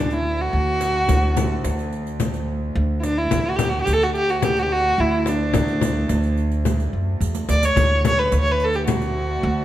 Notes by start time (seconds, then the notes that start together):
Already playing: D2
0.00 D4
0.11 E4, riq
0.41 F#4
0.53 D2
0.81 riq, frame drum
1.08 D2, riq, frame drum
1.37 riq, frame drum
1.64 D2, riq, frame drum
1.79 riq
1.93 riq
2.07 riq
2.20 riq, frame drum
2.34 riq
2.75 D2
3.00 D4 E4, riq, frame drum
3.18 E4
3.30 D2, riq, frame drum
3.46 F#4
3.56 G4, riq, frame drum
3.69 F#4
3.82 G4
3.86 D2, riq, frame drum
3.93 A4
4.02 F#4, riq
4.15 G4, riq
4.29 F#4, riq
4.42 G4, riq, frame drum
4.57 F#4, riq
4.63 G4
4.72 F#4
4.98 D2 E4
5.26 D4, riq, frame drum
5.53 D2, riq, frame drum
5.68 riq
5.81 riq, frame drum
6.09 D2, riq, frame drum
6.23 riq
6.37 riq
6.52 riq
6.65 riq, frame drum
6.80 riq
6.93 F#2
7.20 E2, riq
7.35 riq
7.49 D2 D5, riq, frame drum
7.63 C#5, riq
7.76 D2, riq, frame drum
8.05 C#5, riq, frame drum
8.19 B4
8.32 D2, riq, frame drum
8.40 C#5
8.46 riq
8.52 B4
8.60 riq
8.64 A4
8.73 G4, riq
8.87 F#4, riq, frame drum
9.01 riq
9.43 D2